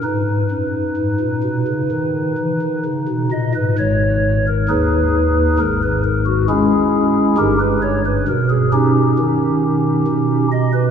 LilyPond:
<<
  \new Staff \with { instrumentName = "Pipe organ" } { \time 4/4 \key gis \minor \tempo 4 = 66 b'2. r8 dis''16 b'16 | cis''8. ais'16 <dis' gis' b'>4 ais'16 b'16 ais'16 fis'16 <cis' e' gis'>4 | <dis' g' ais'>16 b'16 cis''16 b'16 ais'16 gis'16 <cis' dis' g'>2 dis''16 b'16 | }
  \new Staff \with { instrumentName = "Pipe organ" } { \clef bass \time 4/4 \key gis \minor << { dis'2.~ dis'8 r8 | gis,,4 r4 gis,,4 r4 | g,,4 r2. | } \\ { gis,8 fis,8 gis,16 ais,16 b,16 cis16 dis8 e16 dis16 cis16 b,16 ais,16 gis,16 | gis,4 dis,4 gis,4 gis4 | g,4 b,4 dis4 b,4 | } >> }
>>